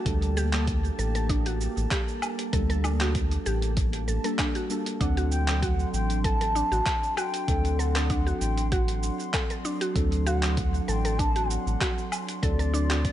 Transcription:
Already playing: G3 A#3 D4 G4 A4 A5
0.05 D2 G3 A#3 D4 A4, kick, closed hi-hat, cabasa
0.22 closed hi-hat, cabasa
0.37 G4, cabasa
0.52 G3 A#3 D4, clap, closed hi-hat, cabasa
0.56 A4
0.67 kick, closed hi-hat, cabasa
0.84 cabasa
0.99 A1 A4, cabasa
1.15 A4, closed hi-hat, cabasa
1.29 D4, kick, closed hi-hat, cabasa
1.46 F#4, closed hi-hat, cabasa
1.61 cabasa
1.77 A1, cabasa
1.91 G4, kick, clap, closed hi-hat, cabasa
2.08 cabasa
2.22 cabasa, low woodblock
2.39 closed hi-hat, cabasa
2.52 D2 G3 A#3 D4 A4, kick, closed hi-hat, cabasa
2.70 A4, closed hi-hat, cabasa
2.84 D4, cabasa, low woodblock
2.99 G3 A#3 D4 F#4, clap, closed hi-hat, cabasa
3.03 A4
3.15 kick, closed hi-hat, cabasa
3.31 closed hi-hat, cabasa
3.46 A1 G4, cabasa
3.62 closed hi-hat, cabasa
3.77 kick, closed hi-hat, cabasa
3.93 closed hi-hat, cabasa
4.08 A1 A4, cabasa
4.24 G3 A#3 D4 A4, closed hi-hat, cabasa
4.39 D4, kick, clap, closed hi-hat, cabasa, low woodblock
4.55 F#4, closed hi-hat, cabasa
4.69 G3 A#3 D4 A4, cabasa
4.86 closed hi-hat, cabasa
5.00 D2 F#3 C4 D4 A4 F#5 C6, kick, closed hi-hat, cabasa
5.17 F#4, closed hi-hat, cabasa
5.31 G5, cabasa
5.46 F#3 C4 D4, clap, closed hi-hat, cabasa
5.51 A4
5.62 F#4 F#5 G5, kick, closed hi-hat, cabasa
5.79 cabasa
5.93 A1 G5, cabasa
6.10 closed hi-hat, cabasa
6.24 A4 A5, kick, closed hi-hat, cabasa
6.41 A4, closed hi-hat, cabasa
6.55 D4, cabasa
6.72 A1 F#4, cabasa
6.86 kick, clap, closed hi-hat, cabasa
7.03 cabasa
7.17 F#4 G5, cabasa, low woodblock
7.34 closed hi-hat, cabasa
7.47 D2 F#3 C4 D4 A4, kick, closed hi-hat, cabasa
7.65 closed hi-hat, cabasa
7.78 A4 F#5, cabasa
7.94 F#3 C4 D4 A4, clap, closed hi-hat, cabasa
7.98 A4
8.10 D4, kick, closed hi-hat, cabasa
8.27 F#4, cabasa
8.40 A1 G5, cabasa
8.58 closed hi-hat, cabasa
8.71 F#4 F#5, kick, closed hi-hat, cabasa
8.88 closed hi-hat, cabasa
9.03 cabasa
9.20 cabasa
9.34 A4, kick, clap, closed hi-hat, cabasa, low woodblock
9.50 A4, closed hi-hat, cabasa
9.65 D4, cabasa
9.81 F#4, closed hi-hat, cabasa
9.95 D2 F#3 C4 D4 A4, kick, closed hi-hat, cabasa
10.12 closed hi-hat, cabasa
10.26 F#4 F#5, cabasa
10.41 F#3 C4 D4 A4, clap, closed hi-hat, cabasa
10.57 kick, closed hi-hat, cabasa
10.74 cabasa
10.88 A1 A4 G5 A5, cabasa
11.05 A4, closed hi-hat, cabasa
11.19 D4 A5, kick, closed hi-hat, cabasa
11.36 F#4, closed hi-hat, cabasa
11.51 F#5, cabasa
11.67 A1, cabasa
11.81 F#4, kick, clap, closed hi-hat, cabasa
11.98 cabasa
12.12 cabasa, low woodblock
12.29 closed hi-hat, cabasa
12.42 D2 F#3 C4 D4 A4 D5, kick, closed hi-hat, cabasa
12.59 A4, closed hi-hat, cabasa
12.74 D4, cabasa
12.88 F#3 C4 D4 F#4, clap, closed hi-hat, cabasa
12.92 A4
13.05 kick, closed hi-hat, cabasa

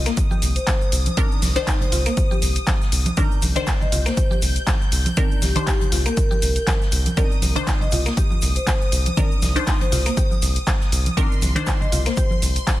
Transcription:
Already playing: D#3 D4 C5 D#6
0.06 A#3, snare, closed hi-hat, shaker
0.17 kick, closed hi-hat, shaker
0.31 G4, high conga, shaker
0.42 C2, open hi-hat, shaker
0.56 C5, closed hi-hat, shaker
0.67 C5, kick, snare, clap, closed hi-hat, high conga, shaker
0.82 shaker
0.92 C2, open hi-hat, shaker
1.06 closed hi-hat, high conga, shaker
1.17 D#3 C4 D4 A#4, kick, closed hi-hat, shaker
1.32 shaker
1.42 C2, snare, open hi-hat, high conga, shaker
1.56 D#3 D4 C5, closed hi-hat, shaker
1.67 D#4, kick, snare, clap, closed hi-hat, shaker
1.81 C5, closed hi-hat, high conga, low conga, shaker
1.92 C2 F4, snare, open hi-hat, low conga, shaker
2.06 A#3, closed hi-hat, shaker
2.17 kick, closed hi-hat, shaker
2.31 G4, high conga, shaker
2.42 C2, open hi-hat, shaker
2.56 closed hi-hat, shaker
2.67 C5, kick, snare, clap, closed hi-hat, high conga, shaker
2.82 snare, shaker
2.92 C2, open hi-hat, shaker
3.06 closed hi-hat, high conga, shaker
3.17 D#3 C4 D4 A#4 G6, kick, closed hi-hat, shaker
3.32 shaker
3.42 C2, open hi-hat, high conga, shaker
3.56 D#3 D4 C5, closed hi-hat, low conga, shaker
3.67 D#4, kick, snare, clap, closed hi-hat, shaker
3.81 D#5, high conga, low conga, shaker
3.92 C2 F4, open hi-hat, low conga, shaker
4.06 A#3 C5, snare, closed hi-hat, shaker
4.17 C5, kick, closed hi-hat, shaker
4.31 G4, high conga, shaker
4.42 C2, open hi-hat, shaker
4.56 closed hi-hat, shaker
4.67 C5, kick, snare, clap, closed hi-hat, high conga, shaker
4.82 shaker
4.92 C2, open hi-hat, shaker
5.06 closed hi-hat, high conga, shaker
5.17 D#3 C4 D4 A#4, kick, closed hi-hat, shaker
5.32 shaker
5.42 C2 G4, snare, open hi-hat, high conga, shaker
5.56 D#3 D4 C5, closed hi-hat, shaker
5.67 D#4, kick, snare, clap, closed hi-hat, shaker
5.81 closed hi-hat, high conga, low conga, shaker
5.92 C2 F4, snare, open hi-hat, low conga, shaker
6.06 A#3 A#4, closed hi-hat, shaker
6.17 kick, closed hi-hat, shaker
6.31 G4, high conga, shaker
6.42 C2, open hi-hat, shaker
6.56 closed hi-hat, shaker
6.67 C5, kick, snare, clap, closed hi-hat, high conga, shaker
6.81 snare, shaker
6.92 C2, open hi-hat, shaker
7.06 closed hi-hat, high conga, shaker
7.17 D#3 C4 D4 A#4 D#6, kick, closed hi-hat, shaker
7.32 shaker
7.42 C2, open hi-hat, high conga, shaker
7.56 D#3 D4 C5, closed hi-hat, low conga, shaker
7.67 D#4, kick, snare, clap, closed hi-hat, shaker
7.81 D#5, high conga, low conga, shaker
7.91 C2 F4, open hi-hat, low conga, shaker
7.93 shaker
8.06 A#3, snare, closed hi-hat, shaker
8.17 G4, kick, closed hi-hat, shaker
8.30 high conga, shaker
8.41 C2, open hi-hat, shaker
8.56 C5, closed hi-hat, shaker
8.66 C5, kick, snare, clap, closed hi-hat, high conga, shaker
8.82 shaker
8.92 C2, open hi-hat, shaker
9.06 closed hi-hat, high conga, shaker
9.17 D#3 C4 D4 A#4, kick, closed hi-hat, shaker
9.32 shaker
9.42 C2, snare, open hi-hat, high conga, shaker
9.56 D#3 D4 C5, closed hi-hat, shaker
9.67 D#4, kick, snare, clap, closed hi-hat, shaker
9.81 C5, closed hi-hat, high conga, low conga, shaker
9.92 C2 F4, snare, open hi-hat, low conga, shaker
10.06 A#3, closed hi-hat, shaker
10.17 G4, kick, closed hi-hat, shaker
10.31 high conga, shaker
10.42 C2, open hi-hat, shaker
10.56 closed hi-hat, shaker
10.67 C5, kick, snare, clap, closed hi-hat, high conga, shaker
10.80 snare, shaker
10.92 C2, open hi-hat, shaker
11.06 closed hi-hat, high conga, shaker
11.17 D#3 C4 D4 A#4 C6, kick, closed hi-hat, shaker
11.32 shaker
11.42 C2, open hi-hat, high conga, shaker
11.56 D#3 D4 C5, closed hi-hat, low conga, shaker
11.67 D#4, kick, snare, clap, closed hi-hat, shaker
11.81 D#5, high conga, low conga, shaker
11.92 C2 F4, open hi-hat, low conga, shaker
12.06 A#3 C5, snare, closed hi-hat, shaker
12.17 G4 C5, kick, closed hi-hat, shaker
12.31 high conga, shaker
12.42 C2, open hi-hat, shaker
12.56 closed hi-hat, shaker
12.67 C5, kick, snare, clap, closed hi-hat, high conga, shaker

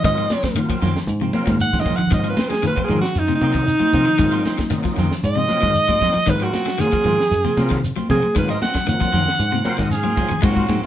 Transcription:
0.03 G#2 D#3 F#3 A#3 C4 F4 D#5, kick, snare, closed hi-hat, shekere
0.17 F3 A#3 C4 F4, closed hi-hat
0.29 F#3 A#3 C4 F4, snare, closed hi-hat, high conga, shekere
0.44 F#3, kick, snare, high conga
0.55 D#3 F#3 A#3 C4 F4, closed hi-hat, high conga, shekere
0.69 F3 A#3 C4 F4, kick, closed hi-hat
0.81 F#2 D#3 F#3 A#3 C4 F4, snare, closed hi-hat, low conga, shekere
0.96 snare, closed hi-hat
1.07 G#2, closed hi-hat, shekere
1.21 C3 A#3 C4 F4, closed hi-hat, low conga
1.33 F#3 A#3 C4 F4, closed hi-hat, high conga, shekere
1.47 G#2 D#3, kick, snare, closed hi-hat, high conga
1.60 F#5, closed hi-hat, shekere
1.73 A#3 C4 F4, kick, snare, low conga
1.80 D#5, low conga
1.84 F#3 A#3 C4 F4, kick, closed hi-hat, shekere
1.90 low conga
1.96 D#3 F#5, muted fingered electric bass stroke, closed hi-hat, low conga
2.07 D#3 F#3 A#3, low conga
2.12 G#2 C4 F4 D#5, kick, closed hi-hat, shekere
2.24 F3 A#3 F4, muted clean electric guitar stroke, closed hi-hat
2.29 B4
2.36 F#3 A#3 C4 F4, snare, closed hi-hat, high conga, shekere
2.49 F#3 G#4, snare, high conga
2.63 D#3 F#3 A#3 C4 F4, closed hi-hat, high conga, shekere
2.67 B4
2.76 F3 A#3 C4 F4, muted fingered electric bass stroke, kick
2.84 G#4
2.88 G#2 D#3 F#3 A#3 C4 F4, closed hi-hat, low conga, shekere
3.01 F#4, snare, closed hi-hat
3.15 F#2 D#4, closed hi-hat, shekere
3.28 C3 A#3 C4 F4, closed hi-hat, high conga
3.35 D#4
3.41 C3 F#3 A#3 C4 D#4 F4, closed hi-hat, high conga, shekere
3.54 D#3, kick, snare, closed hi-hat
3.67 closed hi-hat, shekere
3.79 F#3 A#3 C4 F4, muted fingered electric bass stroke, closed hi-hat, high conga
3.93 C3 F#3 A#3 C4 F4, kick, closed hi-hat, low conga, shekere
4.06 D#3
4.18 G#2 D#3 F#3 A#3 C4 F4, kick, closed hi-hat, shekere
4.32 F3 A#3 C4 F4, closed hi-hat
4.45 F#3 A#3 C4 F4, snare, closed hi-hat, high conga, shekere
4.58 F#3, kick, snare, high conga
4.70 D#3 F#3 A#3 C4 D#4, closed hi-hat, high conga, shekere
4.84 F3 A#3 F4, muted clean electric guitar stroke, kick, closed hi-hat
4.96 F#2 D#3 F#3 A#3 C4 F4, snare, closed hi-hat, low conga, shekere
5.11 snare, closed hi-hat
5.23 G#2 D#5, closed hi-hat, shekere
5.36 C3 A#3 C4 F4, closed hi-hat, low conga
5.48 F#3 A#3 C4 F4, snare, closed hi-hat, high conga, shekere
5.62 G#2 D#3, kick, snare, closed hi-hat
5.74 closed hi-hat, shekere
5.88 F#3 A#3 C4 F4, kick, snare, high conga
6.01 F#3 A#3 C4 D#4 F4, kick, closed hi-hat, low conga, shekere
6.14 F3, muted fingered electric bass stroke, closed hi-hat
6.26 G#2 D#3 F#3 A#3 C4 F4 B4, kick, closed hi-hat, shekere
6.40 F3 A#3 C4 F4 F#4, closed hi-hat
6.53 F#3 A#3 C4 F4, snare, closed hi-hat, high conga, shekere
6.66 F#3, snare
6.78 D#3 F#3 A#3 C4 F4 G#4, closed hi-hat, high conga, shekere
6.92 F3 A#3 C4 F4, muted fingered electric bass stroke, kick
7.05 G#2 D#3 F#3 A#3 C4 F4, closed hi-hat, low conga, shekere
7.20 snare, closed hi-hat
7.31 F#2, closed hi-hat, shekere
7.44 C3 A#3 C4 F4, closed hi-hat, high conga, low conga
7.57 C3 F#3 A#3 C4 F4, closed hi-hat, high conga, shekere
7.70 D#3, kick, snare, closed hi-hat
7.84 closed hi-hat, shekere
7.96 F#3 A#3 C4 F4, muted fingered electric bass stroke, closed hi-hat, high conga
8.09 C3 F#3 A#3 C4 F4 G#4, kick, snare, closed hi-hat, low conga, shekere
8.23 muted clean electric guitar stroke, high conga
8.34 G#2 D#3 F#3 A#3 C4 F4, kick, closed hi-hat, shekere
8.38 B4
8.48 F3 A#3 C4 F4 D#5, snare, closed hi-hat
8.61 F#3 A#3 C4 F4 F#5, snare, closed hi-hat, high conga, shekere
8.75 F#3, kick, snare
8.87 D#3 F3 F#3 A#3 C4 F#5, closed hi-hat, high conga, shekere
9.00 F3 A#3 C4 F4, kick, snare, closed hi-hat
9.12 F#2 D#3 F#3 A#3 C4 F4, closed hi-hat, low conga, shekere
9.27 snare, closed hi-hat
9.39 G#2, closed hi-hat, shekere
9.51 C3 A#3 C4 F4, closed hi-hat, high conga
9.64 F#3 A#3 C4 F4 C5, closed hi-hat, high conga, shekere
9.78 G#2 D#3 D#5, kick, snare, closed hi-hat
9.91 G#4 F5, snare, shekere
10.03 F#3 A#3 C4 F4, high conga
10.16 F#3 A#3 C4 F4 G#5, kick, shekere
10.29 D#3, muted fingered electric bass stroke, floor tom, low conga
10.42 G#2 F#3 G#3 A#3 C4 F4 F#4, kick, crash, shekere
10.56 A#3 C4 F4, kick
10.68 G#2 F3 F#3 A#3 C4 F4, snare, ride bell, high conga, shekere
10.83 muted fingered electric bass stroke, ride bell

